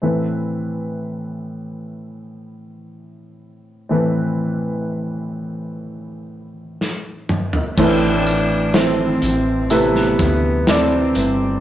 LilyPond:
<<
  \new Staff \with { instrumentName = "Grand piano" } { \time 4/4 \key a \minor \tempo 4 = 62 <c' e' a' b'>1 | <c' e' a' b'>1 | <c' e' a' b'>4 <c' e' a' c''>4 <c e' a' b'>4 <c' e' a' d''>4 | }
  \new Staff \with { instrumentName = "Grand piano" } { \clef bass \time 4/4 \key a \minor <a, e>1 | <a, e>1 | <a, e>4. r2 r8 | }
  \new Staff \with { instrumentName = "Cello" } { \time 4/4 \key a \minor r1 | r1 | d'4 c'4 b4 c'4 | }
  \new Staff \with { instrumentName = "Nylon-string guitar" } { \time 4/4 \key a \minor r1 | r1 | <a, e a c' e' b'>4 <a c' e' b'>4 <a, e a e' b'>4 <a c' e' b'>8 <a c' e' b'>8 | }
  \new Staff \with { instrumentName = "Fretless electric bass" } { \clef bass \time 4/4 \key a \minor r1 | r1 | a,,4. a,,4 d,4 g,,8 | }
  \new DrumStaff \with { instrumentName = "Drums" } \drummode { \time 4/4 r4 r4 r4 r4 | r4 r4 r4 sn8 toml16 tomfh16 | <cymc bd>8 hh8 <hh sn>8 hh8 hh16 sn16 <hh bd>8 <hh sn>8 hh8 | }
>>